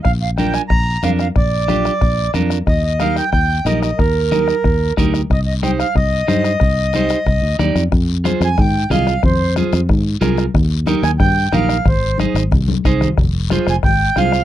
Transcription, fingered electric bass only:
\new Staff \with { instrumentName = "Fingered electric bass" } { \clef bass \time 4/4 \key ees \major \tempo 4 = 183 bes,,2 bes,,4 f,4 | bes,,2 bes,,4 f,4 | ees,2 ees,4 bes,,4 | ees,2 ees,4 d,4 |
c,2 c,4 g,4 | c,2 c,8 d,8 ees,8 f,8 | f,4. f,8 aes,4 c,4 | f,4. f,8 aes,4 c,4 |
ees,4. ees,8 g,4 bes,,4 | aes,,4. aes,,8 c,4 c,4 | f,,4. f,,8 aes,,4 c,4 | }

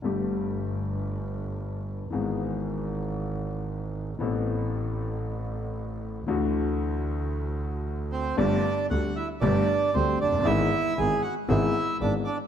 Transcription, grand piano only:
\new Staff \with { instrumentName = "Grand piano" } { \clef bass \time 4/4 \key g \major \tempo 4 = 115 <g,, g, d g a g'>1 | <gis,, gis, e gis b gis'>1 | <a,, a, e b c' a'>1 | <d, d e a d' fis'>1 |
<g,, g, d g a g'>8 r8 <d, d g a g'>8 r8 <g,, g, d g a g'>8 r8 <d, d g a g'>8 r32 f,,32 fis,,32 g,,32 | <gis,, gis, e gis b gis'>8 r8 <gis,, gis, e gis b gis'>8 r8 <gis,, gis, e gis b gis'>8 r8 <gis,, gis, e gis b gis'>8 r8 | }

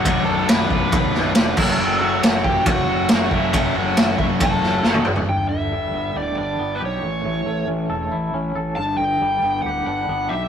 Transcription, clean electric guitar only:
\new Staff \with { instrumentName = "Clean electric guitar" } { \time 4/4 \key g \lydian \tempo 4 = 137 r1 | r1 | r1 | g,8 d8 g8 b8 g'8 d'8 b8 g'8 |
a,8 e8 a8 cis'8 a'8 e'8 cis'8 a'8 | g,8 d8 g8 b8 g'8 d'8 b8 g'8 | }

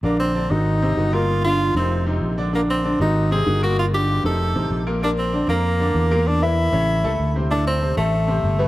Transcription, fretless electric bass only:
\new Staff \with { instrumentName = "Fretless electric bass" } { \clef bass \time 4/4 \key bes \major \tempo 4 = 193 bes,,4. aes,,4. g,,4~ | g,,4. f,,4. bes,,4~ | bes,,4. aes,,4. g,,4~ | g,,4. f,,4 a,,8 bes,,4~ |
bes,,4. f,4. e,4~ | e,4. a,,4 cis,8 d,4~ | d,4. a,,4. g,,4 | }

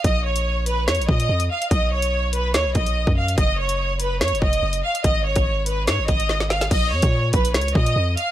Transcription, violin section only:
\new Staff \with { instrumentName = "Violin section" } { \time 4/4 \key bes \phrygian \tempo 4 = 144 ees''8 des''4 ces''8 des''8 ees''4 f''8 | ees''8 cis''4 b'8 cis''8 ees''4 f''8 | ees''8 des''4 ces''8 des''8 ees''4 f''8 | ees''8 des''4 ces''8 des''8 ees''4 f''8 |
ees''8 des''4 ces''8 des''8 ees''4 f''8 | }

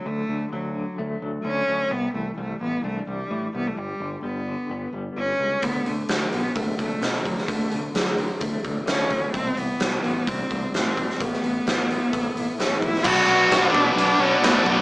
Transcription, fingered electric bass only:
\new Staff \with { instrumentName = "Fingered electric bass" } { \clef bass \time 4/4 \key d \major \tempo 4 = 129 d,8 d,8 d,4 d,8 d,8 d,8 d,8 | c,8 c,8 c,8 a,,8 c,8 c,8 a,8 c,8 | g,,8 g,,8 g,,4 g,,8 g,,8 g,,8 cis,8 | d,8 d,8 d,8 b,,8 d,8 d,8 b,8 d,8 |
d,8 d,8 d,4 d,8 d,8 d,8 d,8 | c,8 c,8 c,8 a,,8 c,8 c,8 a,8 gis,,8 | a,,8 a,,8 a,,4 a,,8 a,,8 a,,8 bes,,8 | b,,8 b,,8 b,,8 b,8 b,,8 b,,8 a,8 b,,8 | }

